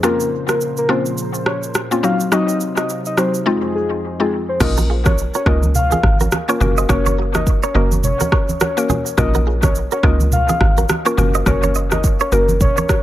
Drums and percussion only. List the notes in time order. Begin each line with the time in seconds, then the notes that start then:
0.03 cross-stick, shaker
0.20 shaker
0.48 cross-stick, shaker
0.61 shaker
0.77 shaker
0.89 cross-stick
1.06 shaker
1.18 shaker
1.34 shaker
1.46 cross-stick
1.63 shaker
1.74 cross-stick, shaker
1.92 shaker
2.04 shaker
2.20 shaker
2.32 cross-stick, shaker
2.49 shaker
2.60 shaker
2.77 cross-stick, shaker
2.89 shaker
3.05 shaker
3.17 cross-stick, shaker
3.34 shaker
4.60 kick, cross-stick, crash, low conga, shaker
4.77 high conga, shaker
5.06 kick, cross-stick, high conga, shaker
5.18 shaker
5.34 shaker
5.46 kick, cross-stick
5.63 high conga, shaker
5.75 low conga, shaker
5.91 high conga, shaker
6.03 kick, cross-stick
6.20 high conga, shaker
6.32 cross-stick, high conga, shaker
6.49 shaker
6.61 high conga, low conga, shaker
6.77 shaker
6.89 kick, cross-stick, low conga, shaker
7.06 high conga, shaker
7.34 cross-stick, high conga, shaker
7.47 kick, shaker
7.63 shaker
7.92 high conga, shaker
8.04 low conga, shaker
8.20 high conga, shaker
8.32 kick, cross-stick
8.49 high conga, shaker
8.60 cross-stick, high conga, shaker
8.78 shaker
8.89 high conga, low conga, shaker
9.06 shaker
9.18 kick, cross-stick, low conga, shaker
9.34 high conga, shaker
9.63 kick, cross-stick, high conga, shaker
9.75 shaker
9.91 shaker
10.03 kick, cross-stick
10.20 high conga, shaker
10.32 low conga, shaker
10.49 high conga, shaker
10.61 kick, cross-stick
10.77 high conga, shaker
10.89 cross-stick, high conga, shaker
11.06 shaker
11.18 high conga, low conga, shaker
11.35 shaker
11.46 kick, cross-stick, low conga, shaker
11.63 high conga, shaker
11.75 shaker
11.91 cross-stick, high conga, shaker
12.04 kick, shaker
12.20 shaker
12.32 shaker
12.49 high conga, shaker
12.61 kick, low conga, shaker
12.77 high conga, shaker
12.89 kick, cross-stick, shaker